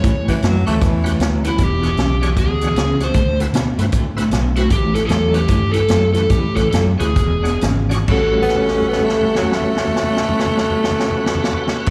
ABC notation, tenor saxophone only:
X:1
M:4/4
L:1/16
Q:"Swing" 1/4=152
K:Amix
V:1 name="Tenor saxophone"
z2 E,2 F,2 A,2 E,4- E, z3 | z16 | z16 | z16 |
z16 | z2 B,2 C2 B,2 A,2 F,2 A,4- | A,16 |]